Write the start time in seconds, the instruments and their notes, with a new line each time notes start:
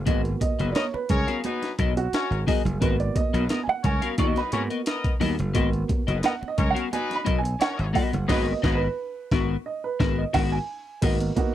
0.06 slap bass G#1, upright piano A#3 B3 F#4, clean electric guitar B3 F#4 A#4 D#5, kick, closed hi-hat, muted conga
0.25 closed hi-hat
0.40 upright piano D#5, muted clean electric guitar stroke, kick, closed hi-hat, high conga
0.59 slap bass F#1, horn section F#3 D#4 B4, clean electric guitar B3 F#4 A#4 D#5, closed hi-hat
0.72 horn section B3 A#4 D#5, upright piano C#5 D5, muted clean electric guitar stroke, closed hi-hat, muted conga, high conga
0.76 snare
0.94 upright piano B4, muted clean electric guitar stroke, muted slap bass stroke, muted conga
1.09 slap bass C#2, horn section C#4 A#4 C#5, upright piano G#4, kick, closed hi-hat, low conga
1.27 clean electric guitar B3 F#4 A#4 F5, closed hi-hat
1.44 horn section F#3 D#4 B4, muted clean electric guitar stroke, closed hi-hat, muted conga, high conga
1.62 muted clean electric guitar stroke, snare, closed hi-hat, muted conga
1.78 slap bass B1, clean electric guitar B3 F#4 A#4 D#5, kick, closed hi-hat
1.97 upright piano F#4, muted clean electric guitar stroke, closed hi-hat
2.12 horn section C#4 A#4 C#5, muted slap bass stroke, muted clean electric guitar stroke, snare, closed hi-hat, muted conga
2.31 slap bass G#1, muted clean electric guitar stroke, closed hi-hat
2.47 clean electric guitar B3 F#4 A#4 D#5, upright piano G#4, kick, open hi-hat, low conga
2.65 slap bass F#1, muted clean electric guitar stroke, closed hi-hat, low conga
2.80 slap bass G#1, upright piano A#3 B3 F#4 B4, clean electric guitar B3 F#4 A#4 D#5, kick, closed hi-hat, muted conga
3.00 upright piano D5, closed hi-hat
3.16 upright piano D#5, muted clean electric guitar stroke, kick, closed hi-hat, high conga
3.33 slap bass B1, horn section F#3 D#4 B4, clean electric guitar B3 F#4 A#4 D#5, closed hi-hat
3.49 horn section B3 A#4 D#5, muted clean electric guitar stroke, snare, closed hi-hat, muted conga, high conga
3.64 upright piano G#5, muted clean electric guitar stroke, muted slap bass stroke
3.69 upright piano F#5, muted conga
3.84 slap bass C#2, horn section C#4 A#4 C#5, upright piano G#5, kick, closed hi-hat, low conga
4.02 clean electric guitar B3 F#4 A#4 F5, closed hi-hat
4.18 slap bass D#2, clean electric guitar B3 F#4 A#4 D#5, upright piano C#6, kick, closed hi-hat, muted conga, high conga
4.36 horn section F#3 D#4 B4, upright piano B5, snare, closed hi-hat, muted conga
4.52 slap bass G#2, upright piano A#3 B3 F#4, horn section C#4 A#4 C#5, muted clean electric guitar stroke, closed hi-hat
4.70 clean electric guitar B3 F#4 A#4 D#5, closed hi-hat
4.86 horn section B3 A#4 D#5, muted clean electric guitar stroke, snare, closed hi-hat
5.04 muted clean electric guitar stroke, kick, closed hi-hat, muted conga
5.20 slap bass D#2, clean electric guitar B3 F#4 A#4 D#5, open hi-hat, low conga
5.38 slap bass F#1, muted clean electric guitar stroke, closed hi-hat, low conga
5.54 slap bass G#1, upright piano A#3 B3 F#4, clean electric guitar B3 F#4 A#4 D#5, kick, closed hi-hat, muted conga
5.73 closed hi-hat
5.88 muted clean electric guitar stroke, kick, closed hi-hat, high conga
6.07 slap bass F#1, horn section F#3 D#4 B4, clean electric guitar B3 F#4 A#4 D#5, closed hi-hat
6.23 horn section B3 A#4 D#5, upright piano F#5, muted clean electric guitar stroke, snare, closed hi-hat, muted conga, high conga
6.41 muted clean electric guitar stroke, muted slap bass stroke, muted conga
6.48 upright piano D#5
6.58 slap bass C#2, horn section C#4 A#4 C#5, kick, closed hi-hat, low conga
6.71 clean electric guitar F5, upright piano F#5
6.75 clean electric guitar B3 F#4 A#4, closed hi-hat
6.91 horn section F#3 D#4 B4, upright piano G#5, muted clean electric guitar stroke, closed hi-hat, muted conga, high conga
7.09 muted clean electric guitar stroke, snare, closed hi-hat, muted conga
7.16 upright piano B5
7.24 slap bass B1, clean electric guitar B3 F#4 A#4 D#5, kick, closed hi-hat
7.38 upright piano G#5
7.43 muted clean electric guitar stroke, closed hi-hat
7.59 horn section C#4 A#4 C#5, upright piano F#5, muted clean electric guitar stroke, snare, closed hi-hat, muted conga
7.77 slap bass G#1, muted clean electric guitar stroke, closed hi-hat
7.93 clean electric guitar B3 F#4 A#4 D#5, upright piano F#5, kick, open hi-hat, low conga
8.12 slap bass F#1, muted clean electric guitar stroke, closed hi-hat, low conga
8.28 slap bass G#1, horn section F#3 D#4 B4, upright piano A#3 B3 F#4 D#5, clean electric guitar B3 F#4 A#4 D#5, kick, snare, crash
8.52 upright piano D#5
8.62 slap bass G#1, horn section F#3 D#4 B4, clean electric guitar B3 F#4 A#4 D#5, kick, snare
8.75 upright piano B4
9.31 slap bass G#1, clean electric guitar B3 F#4 A#4, kick, snare
9.66 upright piano D#5
9.84 upright piano B4
9.99 slap bass G#1, clean electric guitar B3 F#4 A#4, kick, snare
10.18 upright piano D#5
10.33 slap bass G#1, clean electric guitar B3 F#4 A#4, upright piano F#5, kick, snare, crash
10.52 upright piano G#5
11.02 slap bass G#1, upright piano A#3 B3 D#4 F#4, clean electric guitar B3 F#4 A#4 D#5, kick, closed hi-hat, crash, muted conga
11.20 closed hi-hat, muted conga
11.36 upright piano A#3 B3 D#4 F#4, muted clean electric guitar stroke, kick, closed hi-hat, high conga